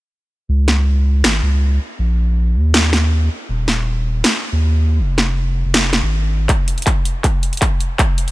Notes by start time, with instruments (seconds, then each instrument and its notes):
0.49 sub bass C#2
0.68 snare
1.24 sub bass G#1, finger snap, snare
1.43 sub bass C#2
1.99 sub bass A#1
2.55 sub bass D#2
2.74 finger snap, snare
2.93 snare
3.49 sub bass D#1
3.68 snare
4.24 finger snap, snare
4.53 sub bass D#2
4.99 sub bass F1
5.18 snare
5.65 sub bass F1
5.74 finger snap, snare
5.93 snare
6.03 sub bass G#1
6.49 kick, clap, closed hi-hat
6.68 closed hi-hat
6.78 closed hi-hat
6.82 closed hi-hat
6.87 kick, clap, closed hi-hat
7.05 closed hi-hat
7.24 kick, clap, closed hi-hat
7.43 closed hi-hat
7.53 closed hi-hat
7.57 closed hi-hat
7.62 kick, clap, closed hi-hat
7.80 closed hi-hat
7.99 kick, clap, closed hi-hat
8.18 closed hi-hat
8.28 closed hi-hat